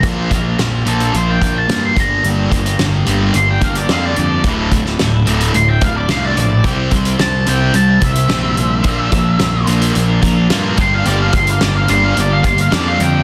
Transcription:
<<
  \new Staff \with { instrumentName = "Lead electric guitar" } { \time 4/4 \key g \dorian \tempo 4 = 109 r4. a'8 c''16 g''8 a''8 c'''16 bes''8 | r2 c'''16 g''16 f''16 d''16 f''16 d''16 d''8 | r2 c'''16 g''16 f''16 d''16 f''16 d''16 d''8 | r4 a''8 g''8 a''8 e''4.~ |
e''4. r2 c'''16 f''16 | d''16 f''16 c'''16 f''16 d''16 f''16 c'''16 f''16 d''16 f''16 c'''16 f''16 d''16 f''16 g''8 | }
  \new Staff \with { instrumentName = "Clean electric guitar" } { \time 4/4 \key g \dorian <bes, f bes d' f' bes'>8 <bes d' f' bes'>16 <bes d' f' bes'>16 <bes, f bes d' f' bes'>16 <bes d' f' bes'>16 <bes d' f' bes'>16 <bes d' f' bes'>8 <bes d' f' bes'>16 <bes d' f' bes'>16 <bes d' f' bes'>16 <bes, f bes d' f' bes'>8 <g, d g bes d' g'>8 | <g, d g bes d' g'>8 <g bes d' g'>16 <g bes d' g'>16 <g, d g bes d' g'>16 <g bes d' g'>16 <g bes d' g'>16 <g bes d' g'>8 <g bes d' g'>16 <g bes d' g'>16 <g bes d' g'>16 <g, d g bes d' g'>8 <g bes d' g'>8 | <d, a, d a e'>8 <a, d a e'>16 <d a e'>16 <d, a, d a e'>16 <d a e'>16 <a, d a e'>16 <d a e'>8 <d a e'>16 <a, d a e'>16 <d a e'>16 <d, a, d a e'>8 <a, d a e'>8 | <c g c' e' g' c''>8 <c' e' g' c''>16 <c' e' g' c''>16 <c g c' e' g' c''>16 <c' e' g' c''>16 <c' e' g' c''>16 <c' e' g' c''>8 <c' e' g' c''>16 <c' e' g' c''>16 <c' e' g' c''>16 <c g c' e' g' c''>8 <c' e' g' c''>8 |
<bes, f bes d' f' bes'>8 <bes d' f' bes'>16 <bes d' f' bes'>16 <bes, f bes d' f' bes'>16 <bes d' f' bes'>16 <bes d' f' bes'>16 <bes d' f' bes'>8 <bes d' f' bes'>16 <bes d' f' bes'>16 <bes d' f' bes'>16 <bes, f bes d' f' bes'>8 <g, d g d' g'>8 | <g, d g bes d' g'>8 <g bes d' g'>16 <g bes d' g'>16 <g, d g bes d' g'>16 <g bes d' g'>16 <g bes d' g'>16 <g bes d' g'>8 <g bes d' g'>16 <g bes d' g'>16 <g bes d' g'>16 <g, d g bes d' g'>8 <g bes d' g'>8 | }
  \new Staff \with { instrumentName = "Distorted electric guitar" } { \clef bass \time 4/4 \key g \dorian <bes, f bes>8 <bes, f>8 <bes, f>8 <bes, f bes>8 <bes, f>8 <bes, f>8 <bes, f bes>8 <g, d g>8 | <g, d g>8 <g, d>8 <g, d>8 <g, d g>8 <g, d>8 <g, d>8 <g, d g>8 <g, d>8 | <d, a, d>8 <d, a,>8 <d, a,>8 <d, a, d>8 <d, a,>8 <d, a,>8 <d, a, d>8 <d, a,>8 | <c g c'>8 <c g>8 <c g>8 <c g c'>8 <c g>8 <c g>8 <c g c'>8 <c g>8 |
<bes, f bes>8 <bes, f>8 <bes, f>8 <bes, f bes>8 <bes, f>8 <bes, f>8 <bes, f bes>8 <g, d g>8 | <g, d g>8 <g, d>8 <g, d>8 <g, d g>8 <g, d>8 <g, d>8 <g, d g>8 <g, d>8 | }
  \new Staff \with { instrumentName = "Picked electric bass" } { \clef bass \time 4/4 \key g \dorian bes,,8 bes,,8 bes,,8 bes,,8 bes,,8 bes,,8 g,8 g,,8 | g,,8 g,,8 g,,8 g,,8 g,,8 g,,8 f,8 f,8 | d,,8 d,,8 d,,8 d,,8 d,,8 d,,8 c,8 bes,,8 | c,8 c,8 c,8 c,8 c,8 c,8 bes,,8 bes,,8 |
bes,,8 bes,,8 bes,,8 bes,,8 bes,,8 bes,,8 g,8 g,,8 | g,,8 g,,8 g,,8 g,,8 g,,8 g,,8 f,8 f,8 | }
  \new DrumStaff \with { instrumentName = "Drums" } \drummode { \time 4/4 <hh bd>8 <hh bd>8 <hh sn>8 hh16 hh16 hh8 <hh bd>8 <hh sn>8 <hh bd>8 | hh8 <hh bd>16 hh16 <hh sn>8 hh8 hh8 <hh bd>16 hh16 <hh sn>8 hh8 | <hh bd>8 <hh bd>16 sn16 <hh sn>8 hh16 hh16 hh8 <hh bd>8 <hh sn>8 hh8 | <hh bd>8 <hh bd>16 hh16 <hh sn>8 hh8 hh8 <hh bd>16 hh16 <hh sn>8 hh8 |
<hh bd>8 <hh bd>8 <hh sn>8 hh16 hh16 hh8 <hh bd>8 <hh sn>8 <hh bd>8 | hh8 <hh bd>16 hh16 <hh sn>8 hh8 hh8 <hh bd>16 hh16 <hh sn>8 hh8 | }
>>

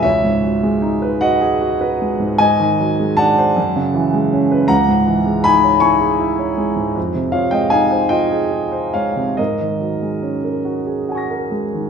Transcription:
<<
  \new Staff \with { instrumentName = "Grand piano" } { \time 6/8 \key cis \minor \tempo 4. = 51 << { r2. | r2. | r2. | \key aes \mixolydian r2. |
r2 <ges'' aes'' des''' bes'''>4 | } \\ { <cis'' e''>4. <dis'' fis''>4. | <dis'' gis''>4 <fis'' a''>2 | <fis'' ais''>4 <gis'' b''>8 <gis'' cis'''>4. | r8 <des'' f''>16 <ees'' g''>16 <f'' aes''>8 <ees'' g''>4 <des'' f''>8 |
<bes' ees''>2~ <bes' ees''>8 r8 | } >> }
  \new Staff \with { instrumentName = "Grand piano" } { \clef bass \time 6/8 \key cis \minor cis,16 gis,16 fis16 gis16 dis'16 b'16 fis'16 gis'16 fis'16 b'16 gis16 gis,16 | gis,16 dis16 fis16 gis16 d'16 bis'16 fis,16 cis16 e16 gis16 cis'16 b'16 | cis,16 gis,16 e16 gis16 dis'16 cis''16 e'16 gis'16 e'16 cis''16 gis16 gis,16 | \key aes \mixolydian f,16 c16 f16 aes16 ees'16 c''16 f'16 aes'16 f'16 c''16 aes16 c16 |
aes,16 ees16 ges16 aes16 des'16 bes'16 ges'16 aes'16 ges'16 bes'16 aes16 ees16 | }
>>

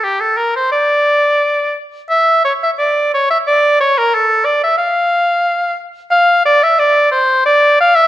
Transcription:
\new Staff \with { instrumentName = "Oboe" } { \time 3/4 \key d \minor \tempo 4 = 89 g'16 a'16 bes'16 c''16 d''4. r8 | e''8 cis''16 e''16 d''8 cis''16 e''16 d''8 cis''16 bes'16 | a'8 d''16 e''16 f''4. r8 | f''8 d''16 e''16 d''8 c''8 d''8 f''16 e''16 | }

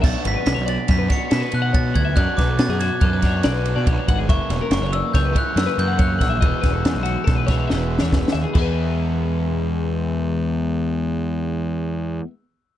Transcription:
<<
  \new Staff \with { instrumentName = "Glockenspiel" } { \time 5/4 \key e \mixolydian \tempo 4 = 141 a'''8 b'''8 b'''8 a'''8 b'''8 cis''''8 b'''8 fis'''8 a'''8 gis'''8 | fis'''8 d'''8 a'''8 gis'''8 fis'''2 r4 | cis'''4 cis'''8 e'''8 g'''8 fis'''8 e'''8 g'''8 fis'''8 e'''8~ | e'''1 r4 |
r1 r4 | r1 r4 | }
  \new Staff \with { instrumentName = "Clean electric guitar" } { \time 5/4 \key e \mixolydian e''8 d''16 b'8 cis''16 d''8 cis''16 b'16 cis''8 a'16 b'8 fis''16 cis''8 fis''16 e''16 | d''8 b'16 a'8 gis'16 fis'8 a'16 b'16 cis''8 d''16 b'8 d''16 cis''8 fis''16 gis'16 | e''8 cis''16 ais'8 cis''16 d''8 cis''16 b'16 cis''8 ais'16 b'8 fis''16 cis''8 fis''16 e''16 | dis''8 b'16 a'8 gis'16 fis'8 a'16 b'16 cis''8 dis''16 b'8 cis''16 b'8 e''16 gis'16 |
<e' gis' b' e''>1~ <e' gis' b' e''>4~ | <e' gis' b' e''>1~ <e' gis' b' e''>4 | }
  \new Staff \with { instrumentName = "Overdriven electric guitar" } { \time 5/4 \key e \mixolydian <b, fis b d' fis'>2~ <b, fis b d' fis'>8 <b, fis b d' fis'>8 <b, fis b d' fis'>2 | <b, fis b d' fis'>2~ <b, fis b d' fis'>8 <b, fis b d' fis'>8 <b, fis b d' fis'>2 | <fis, cis e ais e'>2~ <fis, cis e ais e'>8 <fis, cis e ais e'>8 <fis, cis e ais e'>2 | <e gis b e'>2~ <e gis b e'>8 <e gis b e'>8 <e gis b e'>2 |
<e gis b e'>1~ <e gis b e'>4~ | <e gis b e'>1~ <e gis b e'>4 | }
  \new Staff \with { instrumentName = "Picked electric bass" } { \clef bass \time 5/4 \key e \mixolydian b,,16 r16 gis,,16 r16 b,,16 b,,8 r16 fis,8 r8 b,16 r16 b,4 d,8 | fis,16 r16 b,,8 b,16 fis,8 r16 fis,4 b,,8. b,16 b,,16 r16 gis,,8 | fis,,16 r16 e,,16 r16 fis,,16 fis,,8 r16 cis,8 r8 fis,16 r16 fis,4 ais,,8 | e,,16 r16 e,,8 e,16 b,,8 r16 b,,4 e,,8. e,16 e,,16 r16 dis,16 r16 |
e,1~ e,4~ | e,1~ e,4 | }
  \new DrumStaff \with { instrumentName = "Drums" } \drummode { \time 5/4 <cymc bd>8 cymr8 <cymr sn>8 cymr8 <bd cymr sn>8 <bd cymr sn>8 <cymr sn>8 cymr8 <bd cymr>8 <bd cymr>8 | <bd cymr>8 <bd cymr sn>8 <cymr sn>8 <cymr sn>8 <bd cymr>8 <bd cymr sn>8 <cymr sn>8 cymr8 <bd cymr>8 <bd cymr>8 | <bd cymr>8 <cymr sn>8 <cymr sn>8 cymr8 <bd cymr sn>8 <bd cymr>8 <cymr sn>8 cymr8 <bd cymr>8 <bd cymr sn>8 | <bd cymr>8 <bd cymr sn>8 <cymr sn>8 cymr8 <bd cymr sn>8 <bd cymr sn>8 \tuplet 3/2 { sn8 r8 sn8 <bd sn>8 sn8 r8 } |
<cymc bd>4 r4 r4 r4 r4 | r4 r4 r4 r4 r4 | }
>>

